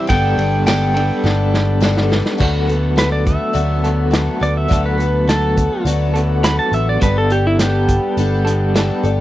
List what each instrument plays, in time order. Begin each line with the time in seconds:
Already playing: harmonium G5
0.07 picked electric bass G1, twelve-string acoustic guitar G3 B3 D4 A4, harmonium D4 A4 B5, pedal steel guitar G5, kick, ride
0.37 picked electric bass G1, twelve-string acoustic guitar B3 D4 A4, ride
0.66 twelve-string acoustic guitar G3 B3 D4 A4, pedal steel guitar G5, snare, ride, tambourine
0.95 clean electric guitar G3, twelve-string acoustic guitar B3 D4 A4, ride
1.24 picked electric bass G1, twelve-string acoustic guitar G3 B3 D4 A4, snare
1.54 snare
1.80 twelve-string acoustic guitar G3 B3 D4 A4, snare, tambourine
1.97 snare
2.09 twelve-string acoustic guitar B3 D4 A4, snare
2.26 snare
2.38 picked electric bass D2, twelve-string acoustic guitar D3 F#3 A3 B3 A4, harmonium D4 A4 B4 F#5, kick, crash
2.67 twelve-string acoustic guitar A3 B3 A4, closed hi-hat
2.96 twelve-string acoustic guitar F#3 A3 B3 A4, pedal steel guitar B4, snare, closed hi-hat
3.12 pedal steel guitar D5
3.25 twelve-string acoustic guitar A3 B3 A4, pedal steel guitar E5, kick, closed hi-hat
3.53 picked electric bass D2, twelve-string acoustic guitar D3 F#3 A3 B3 A4, closed hi-hat
3.84 clean electric guitar D3 F#3 A3 B3 A4, closed hi-hat
4.11 clean electric guitar D3, twelve-string acoustic guitar F#3 A3 B3 A4, snare, closed hi-hat
4.40 picked electric bass D2, twelve-string acoustic guitar A3 B3 A4, pedal steel guitar D5, closed hi-hat
4.57 pedal steel guitar E5
4.68 picked electric bass D2, twelve-string acoustic guitar D3 F#3 A3 B3 A4, kick, closed hi-hat
4.86 pedal steel guitar B4
4.98 twelve-string acoustic guitar A3 B3 A4, closed hi-hat
5.27 twelve-string acoustic guitar F#3 A3 B3 A4, pedal steel guitar A4, snare, closed hi-hat
5.57 twelve-string acoustic guitar A3 B3 A4, kick, closed hi-hat
5.85 picked electric bass D2, twelve-string acoustic guitar D3 F#3 A3 B3 A4, closed hi-hat
6.14 clean electric guitar D3 F#3 A3 B3 A4, closed hi-hat
6.43 clean electric guitar D3, twelve-string acoustic guitar F#3 A3 B3 A4, pedal steel guitar B5, snare, closed hi-hat
6.59 pedal steel guitar A5
6.72 picked electric bass A1, twelve-string acoustic guitar B3 A4, pedal steel guitar E5, closed hi-hat
6.76 twelve-string acoustic guitar A3
6.89 pedal steel guitar D5
7.01 picked electric bass G1, twelve-string acoustic guitar G3 B3 D4 A4, harmonium G3 G4, pedal steel guitar B4, kick, closed hi-hat
7.18 pedal steel guitar A4
7.30 twelve-string acoustic guitar B3 D4 A4, pedal steel guitar G4, closed hi-hat
7.47 pedal steel guitar E4
7.59 twelve-string acoustic guitar G3 B3 D4 A4, pedal steel guitar G4, snare, closed hi-hat
7.88 kick, closed hi-hat
8.17 picked electric bass G1, twelve-string acoustic guitar G3 B3 D4 A4, closed hi-hat
8.45 clean electric guitar G3 B3 D4 A4, closed hi-hat
8.75 twelve-string acoustic guitar G3 B3 D4 A4, snare, closed hi-hat
9.03 picked electric bass G1, twelve-string acoustic guitar B3 D4 A4, closed hi-hat